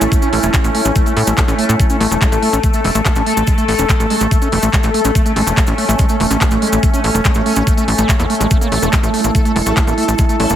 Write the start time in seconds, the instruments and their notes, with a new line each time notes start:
Already playing: synth texture A3 C#4, ambient pad A3 E4
0.01 analog synth bass A1, acid bass A3, cabasa
0.12 acid bass A3, kick, closed hi-hat, cabasa
0.22 acid bass C#4, closed hi-hat, cabasa
0.33 analog synth bass A1, acid bass A3, open hi-hat
0.43 analog synth bass E1, acid bass A3, cabasa
0.54 kick, clap, closed hi-hat, cabasa
0.64 analog synth bass A1, acid bass A3, closed hi-hat, cabasa
0.75 acid bass A3, open hi-hat
0.85 analog synth bass A1, acid bass C#4, closed hi-hat, cabasa
0.96 acid bass A3, kick, closed hi-hat, cabasa
1.06 acid bass A3, closed hi-hat, cabasa
1.17 analog synth bass A2, open hi-hat
1.27 analog synth bass A1, acid bass A3, closed hi-hat, cabasa
1.38 acid bass A3, kick, clap, closed hi-hat, cabasa
1.48 analog synth bass A1, acid bass C#4, clap, closed hi-hat, cabasa
1.59 acid bass A3, open hi-hat
1.64 closed hi-hat
1.69 analog synth bass A2, acid bass A3, closed hi-hat, cabasa
1.80 acid bass A3, synth texture A4, kick, closed hi-hat, cabasa
1.90 acid bass C#4, closed hi-hat, cabasa
1.96 ambient pad A4
2.01 analog synth bass A1, acid bass A3, open hi-hat
2.11 analog synth bass E1, acid bass A3, closed hi-hat, cabasa
2.22 acid bass G#3, kick, clap, closed hi-hat, cabasa
2.32 analog synth bass A1, acid bass A3, closed hi-hat, cabasa
2.43 acid bass A3, open hi-hat
2.53 analog synth bass A1, acid bass C#4, closed hi-hat, cabasa
2.63 acid bass A3, kick, closed hi-hat, cabasa
2.73 acid bass A3, closed hi-hat, cabasa
2.84 analog synth bass E1, acid bass G#3, open hi-hat
2.95 analog synth bass A1, acid bass A3, closed hi-hat, cabasa
3.05 acid bass A3, kick, clap, closed hi-hat, cabasa
3.16 analog synth bass A1, acid bass C#4, closed hi-hat, cabasa
3.26 acid bass A3, open hi-hat
3.32 closed hi-hat
3.37 analog synth bass A1, acid bass A3, closed hi-hat, cabasa
3.47 acid bass G#3, kick, closed hi-hat, cabasa
3.58 acid bass A3, closed hi-hat, cabasa
3.68 analog synth bass A1, acid bass A3, open hi-hat
3.79 analog synth bass E1, acid bass C#4, closed hi-hat, cabasa
3.89 acid bass A3, kick, clap, closed hi-hat, cabasa
4.00 analog synth bass A1, acid bass A3, closed hi-hat, cabasa
4.10 acid bass G#3, open hi-hat
4.21 analog synth bass A1, acid bass A3, closed hi-hat, cabasa
4.31 acid bass A3, kick, closed hi-hat, cabasa
4.42 acid bass C#4, closed hi-hat, cabasa
4.52 analog synth bass E1, acid bass A3, open hi-hat
4.63 analog synth bass A1, acid bass A3, closed hi-hat, cabasa
4.73 acid bass G#3, kick, clap, closed hi-hat, cabasa
4.83 analog synth bass A1, acid bass A3, clap, closed hi-hat, cabasa
4.94 acid bass A3, open hi-hat
5.00 closed hi-hat
5.05 analog synth bass A1, acid bass C#4, closed hi-hat, cabasa
5.15 acid bass A3, synth texture C#4, kick, closed hi-hat, cabasa
5.26 acid bass A3, closed hi-hat, cabasa
5.36 analog synth bass A1, acid bass G#3, open hi-hat
5.47 analog synth bass E1, acid bass A3, closed hi-hat, cabasa
5.57 acid bass A3, kick, clap, closed hi-hat, cabasa
5.67 analog synth bass A1, acid bass C#4, closed hi-hat, cabasa
5.78 acid bass A3, open hi-hat
5.89 analog synth bass A1, acid bass A3, closed hi-hat, cabasa
5.99 acid bass G#3, kick, closed hi-hat, cabasa
6.09 acid bass A3, closed hi-hat, cabasa
6.20 analog synth bass E1, acid bass A3, open hi-hat
6.31 analog synth bass A1, acid bass C#4, closed hi-hat, cabasa
6.41 acid bass A3, kick, clap, closed hi-hat, cabasa
6.51 analog synth bass A1, acid bass A3, closed hi-hat, cabasa
6.62 acid bass G#3, open hi-hat
6.67 closed hi-hat
6.73 analog synth bass A1, acid bass A3, closed hi-hat, cabasa
6.83 acid bass A3, kick, closed hi-hat, cabasa
6.94 acid bass C#4, closed hi-hat, cabasa
7.04 analog synth bass A1, acid bass A3, open hi-hat
7.15 analog synth bass E1, acid bass A3, closed hi-hat, cabasa
7.25 acid bass G#3, kick, clap, closed hi-hat, cabasa
7.34 analog synth bass A1, acid bass A3, closed hi-hat, cabasa
7.46 acid bass A3, open hi-hat
7.56 analog synth bass A1, acid bass C#4, closed hi-hat, cabasa
7.67 acid bass A3, kick, closed hi-hat, cabasa
7.77 acid bass A3, closed hi-hat, cabasa
7.88 analog synth bass A1, open hi-hat
7.98 analog synth bass A1, acid bass A3, closed hi-hat, cabasa
8.09 acid bass A3, kick, clap, closed hi-hat, cabasa
8.19 analog synth bass E2, acid bass A#3, clap, closed hi-hat, cabasa
8.30 acid bass A3, open hi-hat
8.35 closed hi-hat
8.40 analog synth bass A1, acid bass G#3, closed hi-hat, cabasa
8.51 acid bass A3, synth texture A3 A4, kick, closed hi-hat, cabasa
8.61 acid bass A#3, closed hi-hat, cabasa
8.67 ambient pad E4
8.72 analog synth bass A1, acid bass A3, open hi-hat
8.82 analog synth bass E1, wobble bass A3, acid bass A3, closed hi-hat, cabasa
8.93 acid bass G#3, wobble bass A3, kick, clap, closed hi-hat, cabasa
9.03 analog synth bass A1, acid bass A3, closed hi-hat, cabasa
9.14 acid bass A3, open hi-hat
9.24 analog synth bass A1, acid bass A#3, closed hi-hat, cabasa
9.35 acid bass A3, kick, closed hi-hat, cabasa
9.45 acid bass A3, closed hi-hat, cabasa
9.56 analog synth bass E1, acid bass G#3, open hi-hat
9.66 analog synth bass A1, acid bass A3, wobble bass A3, closed hi-hat, cabasa
9.77 acid bass A3, kick, clap, closed hi-hat, cabasa
9.87 analog synth bass A1, acid bass A#3, closed hi-hat, cabasa
9.98 acid bass A3, open hi-hat
10.03 closed hi-hat
10.08 analog synth bass A1, acid bass A3, closed hi-hat, cabasa
10.18 acid bass G#3, kick, closed hi-hat, cabasa
10.29 acid bass A3, closed hi-hat, cabasa
10.40 analog synth bass A1, acid bass A3, wobble bass C#4, open hi-hat
10.50 analog synth bass E1, acid bass A#3, wobble bass E4, closed hi-hat, cabasa